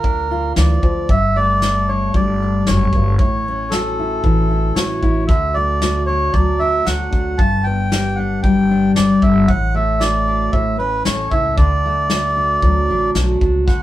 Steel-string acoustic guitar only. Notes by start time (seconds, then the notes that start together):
Already playing: D3 F4
0.03 D4
0.31 F4
0.56 E3
0.82 F3
1.09 G2
1.36 A3
1.63 A4
1.89 D4
2.14 G3
2.43 D4
2.69 F#2
2.94 G2
3.20 A2
3.48 C#4
3.73 F#4
3.99 E4
4.24 E3
4.50 E4
4.77 F#4
5.03 E4
5.29 D3
5.57 A3
5.83 F#4
6.09 D4
6.33 F#3
6.61 D4
6.85 F#4
7.13 D4
7.38 G2
7.66 B3
7.92 G4
8.19 D4
8.45 G3
8.71 D4
8.97 G4
9.24 D4
9.49 A2
9.74 A3
10.00 F#4
10.28 D4
10.54 A2
10.80 C#4
11.06 A4
11.33 E4
11.58 D3
11.86 A3
12.11 F#4
12.36 D4
12.63 F#3
12.91 D4
13.15 F#4
13.42 D4
13.67 D3 F#4